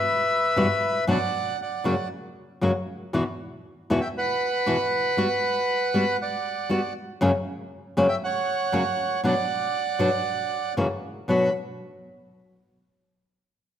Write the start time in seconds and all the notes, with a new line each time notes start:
Already playing: B4 E5
0.56 G2 B2 E3 G3 B3 F#4
1.07 F#2 B2 F#3 B3 D4 F#4 D5 F#5
1.62 D5 F#5
1.84 F#2 C#3 F#3 A#3 C#4 F#4
2.61 F#2 C#3 F#3 A#3 C#4 F#4
3.13 E2 B2 E3 B3 E4 F#4
3.90 E2 B2 E3 B3 E4 F#4
4.01 E5 G5
4.18 B4 F#5
4.66 E2 B2 E3 B3 E4 F#4
5.17 G3 B3 F#4
5.94 G3 B3 F#4
6.22 D5 F#5
6.69 G3 B3 F#4
7.21 F#2 C#3 F#3 A#3 C#4 F#4
7.97 F#2 C#3 F#3 A#3 C#4 F#4
8.08 E5 G5
8.24 C#5 F#5
8.72 F#2 C#3 F#3 A#3 C#4 F#4
9.24 B2 F#3 B3 D4 F#4 D5 F#5
9.99 B2 F#3 B3 D4 F#4
10.77 F#2 C#3 E3 A#3 C#4 F#4
11.28 B2 F#3 B3 D4 F#4 B5